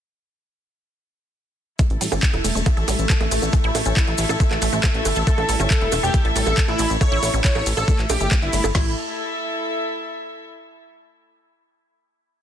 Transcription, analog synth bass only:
0, 0, Header, 1, 2, 480
1, 0, Start_track
1, 0, Tempo, 434783
1, 1978, Time_signature, 4, 2, 24, 8
1, 13714, End_track
2, 0, Start_track
2, 0, Title_t, "Analog synth bass"
2, 0, Program_c, 0, 38
2, 2099, Note_on_c, 0, 33, 86
2, 2175, Note_off_c, 0, 33, 0
2, 2219, Note_on_c, 0, 33, 99
2, 2295, Note_off_c, 0, 33, 0
2, 2339, Note_on_c, 0, 31, 90
2, 2415, Note_off_c, 0, 31, 0
2, 2579, Note_on_c, 0, 28, 89
2, 2655, Note_off_c, 0, 28, 0
2, 2699, Note_on_c, 0, 28, 102
2, 2775, Note_off_c, 0, 28, 0
2, 2819, Note_on_c, 0, 28, 89
2, 2895, Note_off_c, 0, 28, 0
2, 3059, Note_on_c, 0, 33, 87
2, 3135, Note_off_c, 0, 33, 0
2, 3179, Note_on_c, 0, 33, 104
2, 3255, Note_off_c, 0, 33, 0
2, 3299, Note_on_c, 0, 33, 93
2, 3375, Note_off_c, 0, 33, 0
2, 3539, Note_on_c, 0, 33, 91
2, 3615, Note_off_c, 0, 33, 0
2, 3659, Note_on_c, 0, 33, 100
2, 3735, Note_off_c, 0, 33, 0
2, 3779, Note_on_c, 0, 33, 93
2, 3855, Note_off_c, 0, 33, 0
2, 4019, Note_on_c, 0, 33, 89
2, 4095, Note_off_c, 0, 33, 0
2, 4139, Note_on_c, 0, 33, 104
2, 4215, Note_off_c, 0, 33, 0
2, 4259, Note_on_c, 0, 33, 89
2, 4335, Note_off_c, 0, 33, 0
2, 4498, Note_on_c, 0, 33, 91
2, 4574, Note_off_c, 0, 33, 0
2, 4619, Note_on_c, 0, 33, 101
2, 4695, Note_off_c, 0, 33, 0
2, 4738, Note_on_c, 0, 33, 92
2, 4814, Note_off_c, 0, 33, 0
2, 4979, Note_on_c, 0, 33, 89
2, 5055, Note_off_c, 0, 33, 0
2, 5099, Note_on_c, 0, 33, 97
2, 5175, Note_off_c, 0, 33, 0
2, 5219, Note_on_c, 0, 33, 90
2, 5295, Note_off_c, 0, 33, 0
2, 5459, Note_on_c, 0, 33, 92
2, 5535, Note_off_c, 0, 33, 0
2, 5579, Note_on_c, 0, 31, 105
2, 5655, Note_off_c, 0, 31, 0
2, 5699, Note_on_c, 0, 33, 94
2, 5775, Note_off_c, 0, 33, 0
2, 5939, Note_on_c, 0, 33, 90
2, 6014, Note_off_c, 0, 33, 0
2, 6059, Note_on_c, 0, 33, 102
2, 6134, Note_off_c, 0, 33, 0
2, 6178, Note_on_c, 0, 31, 93
2, 6254, Note_off_c, 0, 31, 0
2, 6418, Note_on_c, 0, 28, 86
2, 6494, Note_off_c, 0, 28, 0
2, 6538, Note_on_c, 0, 28, 104
2, 6614, Note_off_c, 0, 28, 0
2, 6659, Note_on_c, 0, 28, 97
2, 6735, Note_off_c, 0, 28, 0
2, 6899, Note_on_c, 0, 33, 89
2, 6975, Note_off_c, 0, 33, 0
2, 7018, Note_on_c, 0, 33, 98
2, 7094, Note_off_c, 0, 33, 0
2, 7138, Note_on_c, 0, 33, 92
2, 7214, Note_off_c, 0, 33, 0
2, 7378, Note_on_c, 0, 33, 91
2, 7454, Note_off_c, 0, 33, 0
2, 7498, Note_on_c, 0, 33, 98
2, 7575, Note_off_c, 0, 33, 0
2, 7618, Note_on_c, 0, 33, 95
2, 7694, Note_off_c, 0, 33, 0
2, 7859, Note_on_c, 0, 33, 90
2, 7935, Note_off_c, 0, 33, 0
2, 7978, Note_on_c, 0, 33, 102
2, 8054, Note_off_c, 0, 33, 0
2, 8098, Note_on_c, 0, 33, 91
2, 8174, Note_off_c, 0, 33, 0
2, 8338, Note_on_c, 0, 33, 86
2, 8414, Note_off_c, 0, 33, 0
2, 8459, Note_on_c, 0, 33, 102
2, 8534, Note_off_c, 0, 33, 0
2, 8578, Note_on_c, 0, 33, 94
2, 8654, Note_off_c, 0, 33, 0
2, 8818, Note_on_c, 0, 33, 89
2, 8894, Note_off_c, 0, 33, 0
2, 8939, Note_on_c, 0, 34, 104
2, 9014, Note_off_c, 0, 34, 0
2, 9058, Note_on_c, 0, 31, 91
2, 9134, Note_off_c, 0, 31, 0
2, 9298, Note_on_c, 0, 31, 91
2, 9374, Note_off_c, 0, 31, 0
2, 9419, Note_on_c, 0, 31, 103
2, 9495, Note_off_c, 0, 31, 0
2, 9539, Note_on_c, 0, 31, 92
2, 9615, Note_off_c, 0, 31, 0
2, 9659, Note_on_c, 0, 33, 101
2, 9882, Note_off_c, 0, 33, 0
2, 13714, End_track
0, 0, End_of_file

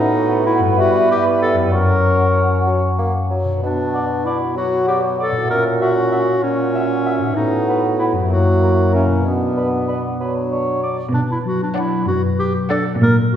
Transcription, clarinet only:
0, 0, Header, 1, 2, 480
1, 0, Start_track
1, 0, Key_signature, 2, "minor"
1, 0, Tempo, 626959
1, 1321, Time_signature, 6, 3, 24, 8
1, 10231, End_track
2, 0, Start_track
2, 0, Title_t, "Clarinet"
2, 0, Program_c, 0, 71
2, 0, Note_on_c, 0, 63, 74
2, 350, Note_off_c, 0, 63, 0
2, 353, Note_on_c, 0, 64, 69
2, 462, Note_off_c, 0, 64, 0
2, 605, Note_on_c, 0, 66, 72
2, 837, Note_off_c, 0, 66, 0
2, 849, Note_on_c, 0, 67, 70
2, 955, Note_off_c, 0, 67, 0
2, 1084, Note_on_c, 0, 69, 64
2, 1192, Note_off_c, 0, 69, 0
2, 1322, Note_on_c, 0, 70, 65
2, 2032, Note_off_c, 0, 70, 0
2, 2781, Note_on_c, 0, 62, 57
2, 3255, Note_on_c, 0, 64, 56
2, 3266, Note_off_c, 0, 62, 0
2, 3494, Note_off_c, 0, 64, 0
2, 3500, Note_on_c, 0, 66, 67
2, 3729, Note_off_c, 0, 66, 0
2, 3733, Note_on_c, 0, 67, 61
2, 3841, Note_off_c, 0, 67, 0
2, 3979, Note_on_c, 0, 69, 68
2, 4207, Note_off_c, 0, 69, 0
2, 4212, Note_on_c, 0, 70, 69
2, 4319, Note_off_c, 0, 70, 0
2, 4446, Note_on_c, 0, 66, 73
2, 4922, Note_on_c, 0, 61, 75
2, 4933, Note_off_c, 0, 66, 0
2, 5633, Note_on_c, 0, 63, 69
2, 5644, Note_off_c, 0, 61, 0
2, 6113, Note_off_c, 0, 63, 0
2, 6117, Note_on_c, 0, 64, 59
2, 6225, Note_off_c, 0, 64, 0
2, 6356, Note_on_c, 0, 66, 66
2, 6827, Note_off_c, 0, 66, 0
2, 6848, Note_on_c, 0, 61, 53
2, 7079, Note_off_c, 0, 61, 0
2, 7089, Note_on_c, 0, 59, 57
2, 8267, Note_off_c, 0, 59, 0
2, 8525, Note_on_c, 0, 62, 58
2, 8579, Note_off_c, 0, 62, 0
2, 8660, Note_on_c, 0, 64, 53
2, 8711, Note_off_c, 0, 64, 0
2, 8769, Note_on_c, 0, 66, 60
2, 8885, Note_off_c, 0, 66, 0
2, 8902, Note_on_c, 0, 62, 51
2, 8953, Note_off_c, 0, 62, 0
2, 9010, Note_on_c, 0, 64, 57
2, 9240, Note_off_c, 0, 64, 0
2, 9245, Note_on_c, 0, 66, 60
2, 9352, Note_off_c, 0, 66, 0
2, 9487, Note_on_c, 0, 67, 63
2, 9594, Note_off_c, 0, 67, 0
2, 9720, Note_on_c, 0, 69, 60
2, 9828, Note_off_c, 0, 69, 0
2, 9971, Note_on_c, 0, 70, 67
2, 10076, Note_off_c, 0, 70, 0
2, 10196, Note_on_c, 0, 66, 73
2, 10231, Note_off_c, 0, 66, 0
2, 10231, End_track
0, 0, End_of_file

